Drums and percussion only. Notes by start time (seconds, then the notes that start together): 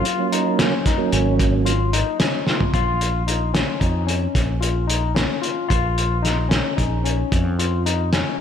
0.05 closed hi-hat
0.32 closed hi-hat
0.59 snare, closed hi-hat
0.86 kick, snare, closed hi-hat
1.12 closed hi-hat
1.39 kick, closed hi-hat
1.66 closed hi-hat
1.93 closed hi-hat
2.20 snare, closed hi-hat
2.47 snare
2.60 floor tom
2.74 kick, closed hi-hat
3.01 closed hi-hat
3.28 closed hi-hat
3.55 snare, closed hi-hat
3.81 kick, closed hi-hat
4.08 closed hi-hat
4.35 kick, snare, closed hi-hat
4.62 closed hi-hat
4.90 closed hi-hat
5.16 snare, closed hi-hat
5.43 closed hi-hat
5.70 kick, closed hi-hat
5.98 closed hi-hat
6.25 snare, closed hi-hat
6.51 snare, closed hi-hat
6.78 kick, closed hi-hat
7.06 closed hi-hat
7.32 kick, closed hi-hat
7.59 closed hi-hat
7.86 closed hi-hat
8.13 snare, closed hi-hat